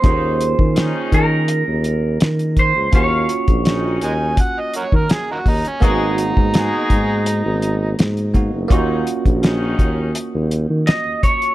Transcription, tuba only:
X:1
M:4/4
L:1/16
Q:1/4=83
K:Ebm
V:1 name="Tuba" clef=bass
E,,3 E,2 z E,3 E,,3 E,3 D,, | E,,2 z B,,,3 E,,2 z3 E, z E,, E,, z | A,,,3 A,,2 z A,,3 A,,,3 A,,3 G,,, | E,,2 z B,,,3 E,,2 z E,,2 E, z E,, z2 |]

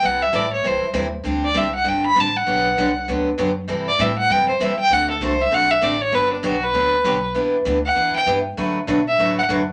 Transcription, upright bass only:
X:1
M:4/4
L:1/8
Q:"Swing" 1/4=197
K:G
V:1 name="Upright bass" clef=bass
C,,2 A,,,2 C,, z _E,,2 | D,,2 C,,2 G,,,2 A,,,2 | B,,,2 C,,2 D,,2 F,,2 | G,,2 A,,2 F,,2 E,,2 |
D,,2 C,,2 z2 A,,,2 | G,,,2 B,,,2 D,,2 B,,,2 | E,,2 D,,2 E,, z G,,2 | D,2 B,,2 A,,2 F,,2 |]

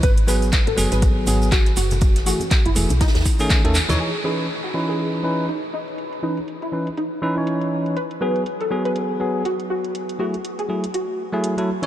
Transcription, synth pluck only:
X:1
M:4/4
L:1/16
Q:"Swing 16ths" 1/4=121
K:C#m
V:1 name="Synth pluck"
B z B2 z A z B z4 F z F2 | z2 F2 z E2 z D2 z6 | G z G2 z F z G z4 D z D2 | z2 D2 z E2 z D2 z6 |
B z B2 z A z B z4 F z F2 | z2 F2 z G2 z F2 z6 |]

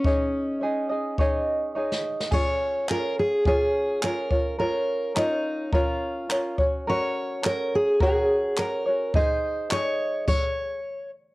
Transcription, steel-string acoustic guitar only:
X:1
M:4/4
L:1/8
Q:"Swing 16ths" 1/4=106
K:Db
V:1 name="Steel-string acoustic guitar"
D6 z2 | d2 B A A2 B2 | B2 E2 F3 z | d2 B A A2 B2 |
c2 d2 d3 z |]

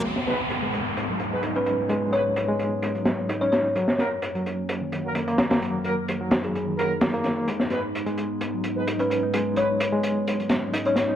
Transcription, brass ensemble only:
X:1
M:4/4
L:1/16
Q:"Swing 16ths" 1/4=129
K:G#m
V:1 name="Brass ensemble"
z2 [B,DGB] z8 [B,DGB] z4 | z2 [B,DGB] z12 z | z2 [A,CFA] z8 [A,CFA] z4 | z2 [A,CFA] z6 z [A,CFA] z4 z |
z2 [B,DGB] z8 [B,DGB] z4 | z2 [B,DGB] z12 z |]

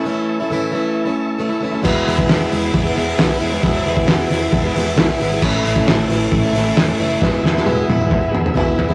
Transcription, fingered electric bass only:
X:1
M:4/4
L:1/8
Q:1/4=134
K:E
V:1 name="Fingered electric bass" clef=bass
z8 | E,,, E,,, E,,, E,,, E,,, E,,, B,,, E,,, | E,,, E,,, E,,, E,,, E,,, E,,, B,,, G,,, | A,,, A,,, A,,, A,,, A,,, A,,, E,,, F,,, |
E,,, E,,, E,,, E,,, E,,, E,,, B,,, E,,, |]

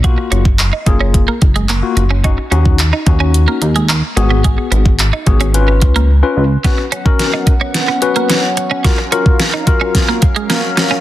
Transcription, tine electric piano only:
X:1
M:4/4
L:1/16
Q:1/4=109
K:F#
V:1 name="Tine electric piano"
[A,EF]3 z3 [A,EG]3 z4 [A,EF] z2 | [CDF] z [CDF]2 z2 [CDF]4 z4 [B,FG]2- | [B,FG]4 z2 [B,FG]2 [CEB]4 z [CEB] z2 | [CFB] z2 [CFA]3 z4 [CFB]3 z3 |
[EFA] z [EFA]2 z2 [EFA]4 z6 |]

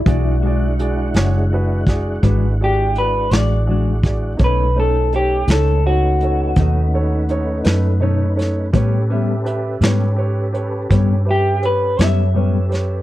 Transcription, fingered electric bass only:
X:1
M:12/8
L:1/8
Q:3/8=55
K:Bdor
V:1 name="Fingered electric bass" clef=bass
B,,,3 F,,,3 G,,,3 A,,,3 | B,,,3 C,,3 ^D,,3 F,,3 | A,,3 G,,3 =G,,3 F,,3 |]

